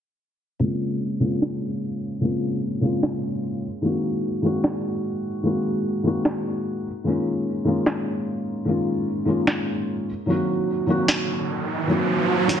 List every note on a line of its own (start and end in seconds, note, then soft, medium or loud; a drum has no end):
0.59 1.18 C#3 medium
0.59 1.19 G#3 medium
0.59 1.20 A#3 medium
0.59 1.20 C4 medium
0.64 1.21 F4 medium
1.20 2.19 C#3 medium
1.20 2.20 G#3 medium
1.20 2.20 A#3 medium
1.20 2.21 C4 medium
1.24 2.21 F4 medium
1.42 snare loud
2.21 2.79 C#3 medium
2.21 2.80 G#3 medium
2.21 2.81 A#3 medium
2.21 2.81 C4 medium
2.25 2.82 F4 medium
2.81 3.61 C#3 medium
2.81 3.62 G#3 medium
2.81 3.62 A#3 medium
2.81 3.63 C4 medium
2.81 3.63 F4 medium
3.03 snare loud
3.81 4.40 D#3 medium
3.81 4.41 G#3 medium
3.81 4.42 A#3 medium
3.81 4.42 C4 medium
3.81 4.43 F#4 medium
4.42 5.41 D#3 medium
4.42 5.42 G#3 medium
4.42 5.42 A#3 medium
4.42 5.43 C4 medium
4.46 5.43 F#4 medium
4.64 snare loud
5.43 6.02 D#3 medium
5.43 6.02 G#3 medium
5.43 6.03 A#3 medium
5.43 6.03 C4 medium
5.43 6.04 F#4 medium
6.03 6.84 D#3 medium
6.03 6.84 G#3 medium
6.03 6.85 A#3 medium
6.03 6.85 C4 medium
6.03 6.86 F#4 medium
6.25 snare loud
7.04 7.63 D#3 medium
7.04 7.64 G#3 medium
7.04 7.64 A#3 medium
7.04 7.65 C#4 medium
7.04 7.65 F4 medium
7.64 8.63 D#3 medium
7.64 8.64 G#3 medium
7.64 8.65 A#3 medium
7.64 8.65 C#4 medium
7.68 8.66 F4 medium
7.86 snare loud
8.65 9.24 D#3 medium
8.65 9.25 G#3 medium
8.65 9.25 A#3 medium
8.65 9.26 C#4 medium
8.69 9.26 F4 medium
9.25 10.06 D#3 medium
9.25 10.06 G#3 medium
9.25 10.07 A#3 medium
9.25 10.07 C#4 medium
9.29 10.08 F4 medium
9.47 snare loud
10.26 10.85 D#3 medium
10.26 10.86 F#3 medium
10.26 10.86 A#3 medium
10.26 10.87 C4 medium
10.26 riser medium
10.30 10.87 F#4 medium
10.86 11.86 D#3 medium
10.86 11.86 F#3 medium
10.86 11.87 A#3 medium
10.86 11.87 C4 medium
10.86 11.88 F#4 medium
11.08 snare loud
11.87 12.46 D#3 medium
11.87 12.47 F#3 medium
11.87 12.47 A#3 medium
11.87 12.48 C4 medium
11.87 12.48 F#4 medium
12.47 12.60 D#3 medium
12.47 12.60 F#3 medium
12.47 12.60 A#3 medium
12.47 12.60 C4 medium
12.47 snare medium
12.51 12.60 F#4 medium